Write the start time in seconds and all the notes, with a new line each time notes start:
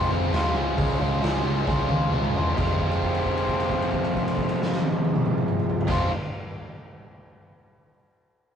Already playing: G#3 C4 F4
0.09 F1 F2 C3 F3 G#3 C4
0.13 F4
0.31 D#2 F2 C3 F3 G#3 C4, snare, open hi-hat
0.35 F4
0.54 C#2 C#3 F3 G#3 C#4 F4
0.75 C#2 C#3 F3 G#3 C#4 F4, kick, open hi-hat
0.98 C#2 C#3 F3 G#3 C#4 F4
1.20 C#2 C#3 F3 G#3 C#4 F4, open hi-hat
1.24 snare
1.43 C#2 C#3 F3 G#3 C#4 F4
1.65 C#2 C#3 F3 G#3 C#4 F4, kick, snare
1.87 C#2 C#3 F3 G#3 C#4 F4, high tom
2.10 C#2 C#3 F3 G#3 C#4 F4, mid tom
2.24 mid tom
2.33 E2 C#3 F3 G#3 C#4 F4, floor tom
2.45 floor tom
2.54 F1 F2 C3 F3 G#3 C4, kick, crash
2.59 F4
2.79 kick, crash
2.91 crash
3.02 kick, crash
3.15 crash
3.25 kick, crash
3.38 crash
3.47 kick, crash
3.60 crash
3.70 kick, crash
3.82 crash
3.92 kick, crash
4.05 crash
4.15 kick, crash
4.28 crash
4.37 kick, crash
4.49 crash
4.62 snare
4.72 snare
4.82 high tom
4.93 high tom
5.05 high tom
5.16 mid tom
5.25 mid tom
5.38 mid tom
5.48 mid tom
5.59 mid tom
5.70 floor tom
5.81 floor tom
5.87 F1 F2 C3 F3 G#3 C4 F4, kick, snare, crash